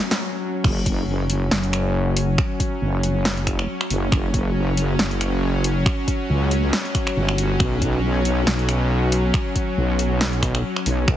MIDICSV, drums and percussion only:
0, 0, Header, 1, 2, 480
1, 0, Start_track
1, 0, Tempo, 434783
1, 710, Time_signature, 4, 2, 24, 8
1, 12328, End_track
2, 0, Start_track
2, 0, Title_t, "Drums"
2, 123, Note_on_c, 9, 38, 99
2, 234, Note_off_c, 9, 38, 0
2, 709, Note_on_c, 9, 36, 110
2, 711, Note_on_c, 9, 26, 77
2, 711, Note_on_c, 9, 49, 102
2, 820, Note_off_c, 9, 36, 0
2, 821, Note_off_c, 9, 26, 0
2, 821, Note_off_c, 9, 49, 0
2, 949, Note_on_c, 9, 36, 60
2, 951, Note_on_c, 9, 42, 84
2, 1059, Note_off_c, 9, 36, 0
2, 1061, Note_off_c, 9, 42, 0
2, 1431, Note_on_c, 9, 42, 84
2, 1541, Note_off_c, 9, 42, 0
2, 1671, Note_on_c, 9, 38, 117
2, 1782, Note_off_c, 9, 38, 0
2, 1805, Note_on_c, 9, 42, 39
2, 1911, Note_off_c, 9, 42, 0
2, 1911, Note_on_c, 9, 26, 52
2, 1911, Note_on_c, 9, 42, 86
2, 2021, Note_off_c, 9, 26, 0
2, 2021, Note_off_c, 9, 42, 0
2, 2390, Note_on_c, 9, 46, 100
2, 2501, Note_off_c, 9, 46, 0
2, 2629, Note_on_c, 9, 36, 118
2, 2630, Note_on_c, 9, 26, 76
2, 2739, Note_off_c, 9, 36, 0
2, 2741, Note_off_c, 9, 26, 0
2, 2869, Note_on_c, 9, 36, 62
2, 2871, Note_on_c, 9, 42, 85
2, 2979, Note_off_c, 9, 36, 0
2, 2981, Note_off_c, 9, 42, 0
2, 3350, Note_on_c, 9, 42, 87
2, 3460, Note_off_c, 9, 42, 0
2, 3590, Note_on_c, 9, 38, 118
2, 3700, Note_off_c, 9, 38, 0
2, 3723, Note_on_c, 9, 42, 38
2, 3828, Note_on_c, 9, 36, 62
2, 3830, Note_off_c, 9, 42, 0
2, 3830, Note_on_c, 9, 26, 51
2, 3830, Note_on_c, 9, 42, 84
2, 3939, Note_off_c, 9, 36, 0
2, 3941, Note_off_c, 9, 26, 0
2, 3941, Note_off_c, 9, 42, 0
2, 3964, Note_on_c, 9, 26, 65
2, 4074, Note_off_c, 9, 26, 0
2, 4204, Note_on_c, 9, 26, 63
2, 4311, Note_on_c, 9, 46, 92
2, 4314, Note_off_c, 9, 26, 0
2, 4421, Note_off_c, 9, 46, 0
2, 4548, Note_on_c, 9, 36, 122
2, 4551, Note_on_c, 9, 26, 74
2, 4659, Note_off_c, 9, 36, 0
2, 4662, Note_off_c, 9, 26, 0
2, 4788, Note_on_c, 9, 36, 66
2, 4791, Note_on_c, 9, 42, 80
2, 4899, Note_off_c, 9, 36, 0
2, 4901, Note_off_c, 9, 42, 0
2, 5271, Note_on_c, 9, 42, 80
2, 5381, Note_off_c, 9, 42, 0
2, 5511, Note_on_c, 9, 38, 122
2, 5621, Note_off_c, 9, 38, 0
2, 5643, Note_on_c, 9, 42, 39
2, 5751, Note_off_c, 9, 42, 0
2, 5751, Note_on_c, 9, 26, 52
2, 5751, Note_on_c, 9, 42, 84
2, 5861, Note_off_c, 9, 26, 0
2, 5861, Note_off_c, 9, 42, 0
2, 6230, Note_on_c, 9, 46, 94
2, 6340, Note_off_c, 9, 46, 0
2, 6468, Note_on_c, 9, 36, 119
2, 6470, Note_on_c, 9, 26, 79
2, 6579, Note_off_c, 9, 36, 0
2, 6580, Note_off_c, 9, 26, 0
2, 6708, Note_on_c, 9, 36, 61
2, 6710, Note_on_c, 9, 42, 77
2, 6819, Note_off_c, 9, 36, 0
2, 6820, Note_off_c, 9, 42, 0
2, 7190, Note_on_c, 9, 42, 78
2, 7301, Note_off_c, 9, 42, 0
2, 7430, Note_on_c, 9, 38, 121
2, 7541, Note_off_c, 9, 38, 0
2, 7564, Note_on_c, 9, 42, 35
2, 7669, Note_on_c, 9, 36, 67
2, 7671, Note_off_c, 9, 42, 0
2, 7671, Note_on_c, 9, 26, 50
2, 7671, Note_on_c, 9, 42, 78
2, 7779, Note_off_c, 9, 36, 0
2, 7781, Note_off_c, 9, 26, 0
2, 7781, Note_off_c, 9, 42, 0
2, 7803, Note_on_c, 9, 26, 63
2, 7914, Note_off_c, 9, 26, 0
2, 8043, Note_on_c, 9, 26, 64
2, 8151, Note_on_c, 9, 46, 92
2, 8154, Note_off_c, 9, 26, 0
2, 8261, Note_off_c, 9, 46, 0
2, 8389, Note_on_c, 9, 36, 115
2, 8391, Note_on_c, 9, 26, 82
2, 8499, Note_off_c, 9, 36, 0
2, 8501, Note_off_c, 9, 26, 0
2, 8629, Note_on_c, 9, 36, 60
2, 8631, Note_on_c, 9, 42, 78
2, 8739, Note_off_c, 9, 36, 0
2, 8741, Note_off_c, 9, 42, 0
2, 9110, Note_on_c, 9, 42, 78
2, 9220, Note_off_c, 9, 42, 0
2, 9350, Note_on_c, 9, 38, 118
2, 9460, Note_off_c, 9, 38, 0
2, 9484, Note_on_c, 9, 42, 34
2, 9590, Note_off_c, 9, 42, 0
2, 9590, Note_on_c, 9, 26, 53
2, 9590, Note_on_c, 9, 42, 75
2, 9700, Note_off_c, 9, 26, 0
2, 9700, Note_off_c, 9, 42, 0
2, 10070, Note_on_c, 9, 46, 86
2, 10180, Note_off_c, 9, 46, 0
2, 10309, Note_on_c, 9, 36, 114
2, 10310, Note_on_c, 9, 26, 84
2, 10419, Note_off_c, 9, 36, 0
2, 10420, Note_off_c, 9, 26, 0
2, 10549, Note_on_c, 9, 36, 59
2, 10550, Note_on_c, 9, 42, 77
2, 10659, Note_off_c, 9, 36, 0
2, 10660, Note_off_c, 9, 42, 0
2, 11030, Note_on_c, 9, 42, 76
2, 11140, Note_off_c, 9, 42, 0
2, 11270, Note_on_c, 9, 38, 116
2, 11380, Note_off_c, 9, 38, 0
2, 11404, Note_on_c, 9, 42, 34
2, 11509, Note_on_c, 9, 36, 62
2, 11511, Note_off_c, 9, 42, 0
2, 11511, Note_on_c, 9, 26, 56
2, 11511, Note_on_c, 9, 42, 76
2, 11619, Note_off_c, 9, 36, 0
2, 11621, Note_off_c, 9, 26, 0
2, 11621, Note_off_c, 9, 42, 0
2, 11644, Note_on_c, 9, 26, 66
2, 11754, Note_off_c, 9, 26, 0
2, 11884, Note_on_c, 9, 26, 67
2, 11990, Note_on_c, 9, 46, 90
2, 11994, Note_off_c, 9, 26, 0
2, 12101, Note_off_c, 9, 46, 0
2, 12229, Note_on_c, 9, 36, 112
2, 12231, Note_on_c, 9, 26, 82
2, 12328, Note_off_c, 9, 26, 0
2, 12328, Note_off_c, 9, 36, 0
2, 12328, End_track
0, 0, End_of_file